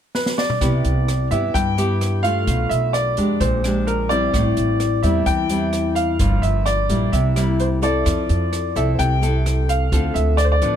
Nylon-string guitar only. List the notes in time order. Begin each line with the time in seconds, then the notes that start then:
0.61 C3 B3 E4 G4
1.31 B3 E4 G4
1.54 G2
1.78 B3 E4 G4
2.24 A3 D4 F4
2.47 B2
3.17 G#3 D4 G4
3.41 A#2
3.65 G#3 D4 G4
4.10 G3 C4 E4
4.34 A2
5.04 G3 C4 E4
5.27 E3
5.50 G3 C4 E4
6.20 G2 F3 A#3 D4
6.89 G3 A#3 E4
7.13 C3
7.36 G3 A#3 E4
7.82 C4 E4 A4
8.05 F3
8.76 C4 E4 A4
8.99 C3
9.22 C4 E4 A4
9.92 D3 C4 F4 A4
10.62 F3 B3 D4